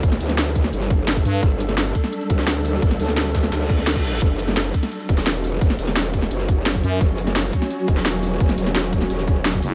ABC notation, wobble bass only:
X:1
M:4/4
L:1/8
Q:1/4=172
K:F#phr
V:1 name="Wobble bass" clef=bass
A,,, D,,3 G,,,3 z | G,,,3 z2 D,,3 | A,,, D,,3 D,,4 | F,,,3 z2 E,,,3 |
G,,, E,,,3 F,,,3 z | F,,,3 z2 E,,,3 | G,,, E,,,3 E,,,3 z |]